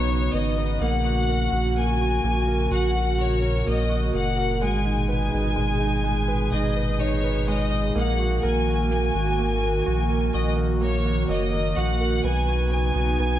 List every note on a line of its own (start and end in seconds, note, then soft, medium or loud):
0.00 0.29 B1 medium
0.00 4.58 C#3 medium
0.00 0.34 B3 soft
0.00 0.77 B3 medium
0.00 0.77 D#4 medium
0.00 0.11 F#4 medium
0.00 0.57 B4 soft
0.00 0.34 C#5 medium
0.11 0.79 F#4 soft
0.33 0.78 G#1 medium
0.33 0.80 B3 soft
0.33 0.82 D#5 medium
0.57 0.80 B4 soft
0.80 1.48 A#1 medium
0.80 7.91 A#2 medium
0.80 1.75 A#3 medium
0.80 4.58 F#4 medium
0.80 1.73 F#5 medium
1.05 1.51 F#4 soft
1.29 2.46 A#4 soft
1.52 2.19 A#1 medium
1.52 2.00 F#4 soft
1.77 2.23 A#3 soft
1.77 2.69 G#5 medium
2.01 2.70 F#4 soft
2.23 2.68 A#1 medium
2.23 3.65 A#3 soft
2.48 2.94 A#4 soft
2.71 3.62 A#1 medium
2.71 3.17 F#4 medium
2.71 3.20 F#5 medium
2.95 3.41 A#4 soft
3.18 3.88 F#4 soft
3.18 3.68 C#5 medium
3.42 4.35 A#4 soft
3.66 4.11 A#1 medium
3.66 4.12 A#3 soft
3.66 4.12 D#5 medium
3.89 4.59 F#4 soft
4.13 4.64 F#1 medium
4.13 4.60 A#3 soft
4.13 4.59 F#5 medium
4.37 4.60 A#4 soft
4.62 5.29 G#1 medium
4.62 7.92 B2 medium
4.62 5.54 G#3 medium
4.62 7.92 G#4 medium
4.62 5.07 G#5 medium
4.85 5.30 D#4 soft
5.08 6.27 B4 soft
5.08 6.49 G#5 medium
5.32 5.56 G#1 medium
5.32 5.79 D#4 soft
5.56 6.48 G#1 medium
5.56 6.02 G#3 soft
5.80 6.51 D#4 soft
6.04 7.46 G#3 soft
6.28 6.74 B4 soft
6.52 7.91 G#1 medium
6.52 6.98 D#4 soft
6.52 7.01 D#5 medium
6.76 7.22 B4 soft
6.99 7.70 D#4 soft
6.99 7.48 C#5 medium
7.24 7.93 B4 soft
7.48 7.94 G#3 soft
7.48 7.92 D#5 medium
7.72 7.95 D#4 soft
7.95 8.39 A#1 medium
7.95 12.20 D#3 medium
7.95 8.89 A#3 medium
7.95 12.20 A#3 medium
7.95 12.20 F#4 medium
7.95 8.44 F#5 medium
8.19 8.66 F#4 soft
8.43 9.10 A#1 medium
8.43 9.61 A#4 soft
8.43 8.88 G#5 medium
8.67 9.13 F#4 soft
8.91 9.37 A#3 soft
8.91 10.30 G#5 medium
9.14 9.82 G#1 medium
9.14 9.85 F#4 soft
9.39 10.80 A#3 soft
9.63 10.08 A#4 soft
9.86 10.31 A#1 medium
9.86 10.32 F#4 medium
10.10 10.55 A#4 soft
10.34 11.25 A#1 medium
10.34 11.03 F#4 soft
10.34 10.54 D#5 medium
10.57 11.51 A#4 soft
10.81 11.28 A#3 soft
10.81 11.26 C#5 medium
11.05 11.75 F#4 soft
11.29 11.73 F#1 medium
11.29 12.21 A#3 soft
11.29 11.76 D#5 medium
11.53 11.99 A#4 soft
11.76 12.20 A#1 medium
11.76 12.22 F#4 medium
11.76 12.24 F#5 medium
12.01 12.23 A#4 soft
12.23 12.91 B1 medium
12.23 13.39 C#3 medium
12.23 13.39 B3 medium
12.23 12.70 B3 medium
12.23 13.39 D#4 medium
12.23 12.68 G#5 medium
12.48 12.94 F#4 soft
12.72 13.18 B3 soft
12.72 13.39 G#5 medium
12.95 13.17 B1 medium
12.95 13.39 F#4 soft
13.19 13.39 B1 medium
13.19 13.39 B3 soft